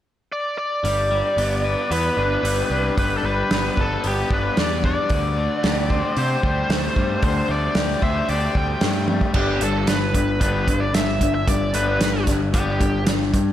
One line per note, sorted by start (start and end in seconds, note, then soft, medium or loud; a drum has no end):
0.32 0.57 D5 medium
0.58 1.95 D5 medium
0.84 1.21 G1 medium
0.84 1.11 G3 medium
0.84 open hi-hat soft
1.11 2.43 G3 soft
1.37 1.74 G1 medium
1.37 1.90 B3 medium
1.37 open hi-hat soft
1.65 2.98 B4 medium
1.91 2.09 E2 medium
1.91 3.24 B3 medium
1.91 2.94 B4 medium
1.91 open hi-hat soft
2.17 2.36 G1 medium
2.17 2.71 D4 medium
2.43 2.62 G1 medium
2.43 2.97 G3 medium
2.43 open hi-hat soft
2.70 2.89 C2 medium
2.70 4.30 D4 medium
2.98 3.16 G1 medium
2.98 3.25 G3 medium
2.98 3.16 B4 medium
2.98 kick medium
2.98 open hi-hat soft
3.17 3.24 A4 medium
3.23 3.42 G1 medium
3.23 4.57 G3 medium
3.23 3.80 B4 medium
3.51 3.69 G1 medium
3.51 4.03 B3 medium
3.51 snare medium
3.51 open hi-hat soft
3.77 3.96 G1 medium
3.77 4.06 A4 medium
3.77 5.10 B4 medium
3.77 kick medium
4.04 4.23 G1 medium
4.04 5.10 B3 medium
4.04 4.33 G4 medium
4.04 open hi-hat soft
4.30 4.49 G1 medium
4.30 4.84 D4 medium
4.30 4.59 B4 medium
4.30 kick medium
4.57 4.94 E2 medium
4.57 5.37 G3 medium
4.57 4.85 D5 medium
4.57 snare loud
4.57 open hi-hat soft
4.84 5.93 D4 medium
4.84 6.22 D5 medium
4.84 kick medium
5.10 5.47 D2 medium
5.10 6.43 D3 medium
5.10 kick medium
5.10 open hi-hat soft
5.38 6.69 A3 medium
5.63 6.01 D2 medium
5.63 6.17 G4 medium
5.63 snare medium
5.63 open hi-hat soft
5.90 7.23 C5 medium
5.90 kick medium
6.17 6.35 C3 medium
6.17 7.50 G4 medium
6.17 7.23 C5 medium
6.17 open hi-hat soft
6.43 6.62 D2 medium
6.43 6.96 G3 medium
6.43 kick medium
6.69 6.88 D2 medium
6.69 7.48 A3 medium
6.69 snare loud
6.69 open hi-hat soft
6.96 7.15 G2 medium
6.96 8.29 G3 medium
6.96 kick medium
7.23 7.41 D2 medium
7.23 8.56 D3 medium
7.23 7.51 C5 medium
7.23 kick medium
7.23 open hi-hat soft
7.49 7.68 D2 medium
7.49 8.82 A3 medium
7.49 8.03 D5 medium
7.75 7.94 D2 medium
7.75 8.29 G4 medium
7.75 snare loud
7.75 open hi-hat soft
8.02 8.21 D2 medium
8.02 9.35 C5 medium
8.02 8.30 E5 medium
8.02 kick medium
8.29 8.47 D2 medium
8.29 9.36 G4 medium
8.29 8.57 D5 medium
8.29 open hi-hat soft
8.55 8.74 D2 medium
8.55 9.08 G3 medium
8.55 9.06 G5 medium
8.55 kick medium
8.81 9.19 G2 medium
8.81 9.35 A3 medium
8.81 snare loud
8.81 open hi-hat soft
9.08 9.34 G3 medium
9.08 high tom soft
9.21 kick medium
9.34 9.59 G1 medium
9.34 9.60 G3 medium
9.34 9.61 B3 medium
9.34 9.60 D4 medium
9.34 9.63 G4 medium
9.34 kick medium
9.34 crash medium
9.61 9.85 G1 medium
9.61 9.86 G3 medium
9.61 9.86 D4 medium
9.61 9.88 A4 medium
9.61 closed hi-hat medium
9.87 10.12 G1 medium
9.87 10.12 G3 medium
9.87 10.12 D4 medium
9.87 10.40 B4 medium
9.87 snare medium
9.87 closed hi-hat medium
10.14 10.39 G1 medium
10.14 10.39 G3 medium
10.14 10.39 D4 medium
10.14 kick medium
10.14 closed hi-hat medium
10.41 10.65 G1 medium
10.41 10.66 G3 medium
10.41 10.66 B3 medium
10.41 10.66 D4 medium
10.41 10.82 B4 medium
10.41 kick medium
10.41 closed hi-hat medium
10.67 10.92 G1 medium
10.67 10.92 G3 medium
10.67 10.92 D4 medium
10.67 kick medium
10.67 closed hi-hat medium
10.80 10.94 D5 medium
10.94 11.18 G1 medium
10.94 11.19 G3 medium
10.94 11.19 D4 medium
10.94 11.34 E5 medium
10.94 snare loud
10.94 closed hi-hat medium
11.21 11.45 G1 medium
11.21 11.45 G3 medium
11.21 11.46 D4 medium
11.21 kick medium
11.21 closed hi-hat medium
11.35 11.48 E5 medium
11.48 11.72 G1 medium
11.48 11.72 G3 medium
11.48 11.72 D4 medium
11.48 11.75 D5 medium
11.48 kick medium
11.48 closed hi-hat medium
11.74 11.98 G1 medium
11.74 11.99 G3 medium
11.74 12.00 B3 medium
11.74 12.00 D4 medium
11.74 12.24 B4 medium
11.74 closed hi-hat medium
12.00 12.24 G1 medium
12.00 12.25 G3 medium
12.00 12.25 D4 medium
12.00 snare loud
12.00 closed hi-hat medium
12.27 12.51 G1 medium
12.27 12.51 G3 medium
12.27 12.52 D4 medium
12.27 kick medium
12.27 snare soft
12.27 closed hi-hat medium
12.54 12.78 G1 medium
12.54 12.79 G3 medium
12.54 12.79 B3 medium
12.54 12.79 D4 medium
12.54 13.04 G4 medium
12.54 kick loud
12.54 closed hi-hat medium
12.81 13.05 G1 medium
12.81 13.05 G3 medium
12.81 13.05 D4 medium
12.81 kick medium
12.81 closed hi-hat medium
13.07 13.31 G1 medium
13.07 13.31 G3 medium
13.07 13.32 D4 medium
13.07 snare loud
13.07 closed hi-hat medium
13.34 13.53 G2 medium
13.34 13.53 G3 medium
13.34 13.53 D4 medium
13.34 kick medium
13.34 closed hi-hat medium